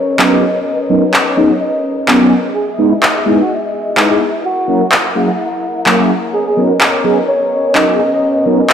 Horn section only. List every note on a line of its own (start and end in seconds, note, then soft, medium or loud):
0.00 0.17 C#5 medium
0.19 0.85 D#5 medium
1.37 1.54 D#5 medium
1.61 1.97 D#5 medium
2.55 2.66 G#4 medium
2.68 2.83 G#4 medium
3.39 3.54 F#4 medium
4.44 4.91 F#4 medium
6.33 6.43 G#4 medium
6.46 6.61 G#4 medium
7.28 7.73 C#5 medium
7.75 8.41 D#5 medium